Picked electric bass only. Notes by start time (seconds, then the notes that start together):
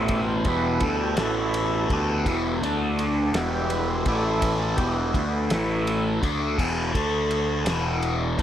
Already playing: A1
0.45 E1
0.81 D2
1.17 A1
1.90 D2
2.25 E1
2.61 D2
3.33 E1
4.06 A1
4.78 E1
5.14 D2
5.50 A1
6.23 D2
6.58 E1
6.94 D2
7.65 E1
8.39 A1